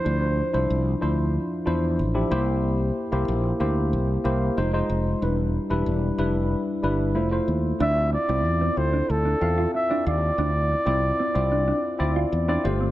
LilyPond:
<<
  \new Staff \with { instrumentName = "Flugelhorn" } { \time 4/4 \key d \minor \tempo 4 = 93 c''4. r2 r8 | r1 | r1 | e''8 d''4 c''8 a'4 e''8 d''8~ |
d''2.~ d''8 r8 | }
  \new Staff \with { instrumentName = "Tine electric piano" } { \time 4/4 \key d \minor <f d' e' c''>8 r16 <f d' e' c''>8 r16 <f d' e' c''>8. r16 <d' e' f' c''>8 r16 <f d' e' g'>16 <bes e' g' c''>8~ | <bes e' g' c''>8 r16 <bes e' g' c''>8 r16 <bes e' g' c''>8. r16 <bes e' g' c''>8 <aes ees' f' c''>16 <aes ees' f' c''>8 r16 | <g d' e' b'>8 r16 <g d' e' b'>8 r16 <g d' e' b'>8. r16 <g d' e' b'>8 <a e' f' c''>16 <a e' f' c''>8 r16 | <c' e' f' d''>8 r16 <c' e' f' d''>8 r16 <c' e' f' a'>8. r16 <c' f' e'' f''>8 r16 <c' e' f' d''>8 r16 |
<c' e' f' d''>8 r16 <c' e' f' d''>8 r16 <c' e' f' d''>8. r16 <c' e' f' d''>8 r16 <c' e' f' d''>16 <a f' g' c''>8 | }
  \new Staff \with { instrumentName = "Clean electric guitar" } { \time 4/4 \key d \minor r1 | r1 | r1 | d'16 r8 c'16 r16 c'16 r16 d'16 r16 d'16 r16 f'16 r16 d'16 f'16 r16 |
d'16 r8 c'16 r16 c'16 r16 d'16 d'16 r8 f'16 r16 d'16 r16 c'16 | }
  \new Staff \with { instrumentName = "Fretless electric bass" } { \clef bass \time 4/4 \key d \minor d,8. c,16 c,8 d,8. r16 e,8 a,,8 c,8~ | c,8. c,16 bes,,8 d,8 c,8 c,8 f,,8 f,,8 | e,,8. e,,16 e,,8 f,,8. r16 g,,8 f,,8 ees,8 | d,8. c,16 e,8 d,8 d,8 e,8 r8 ees,8 |
d,8. c,8 r16 c,8. r16 d,8 e,8 g,,8 | }
>>